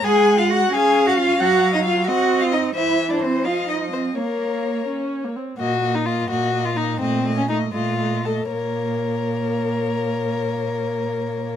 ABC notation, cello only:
X:1
M:6/8
L:1/16
Q:3/8=84
K:Bbm
V:1 name="Cello"
A3 F G2 A3 G F2 | G3 E F2 G3 F E2 | =E3 =D C2 F2 _E2 C2 | B,6 z6 |
B,,6 B,,6 | B,,6 B,,6 | B,,12- | B,,12 |]